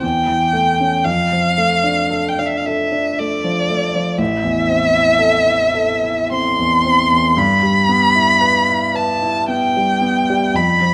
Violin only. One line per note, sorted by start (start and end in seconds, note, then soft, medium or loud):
0.03 1.06 G5 medium
1.05 2.30 F5 medium
2.29 2.41 G5 medium
2.39 2.48 F5 soft
2.46 2.59 E5 soft
2.57 2.67 F5 soft
2.66 3.20 E5 medium
3.19 4.20 D5 medium
4.19 6.32 E5 medium
6.32 7.39 C6 medium
7.38 8.97 B5 medium
8.96 9.49 A5 medium
9.50 10.57 G5 medium
10.56 10.94 B5 medium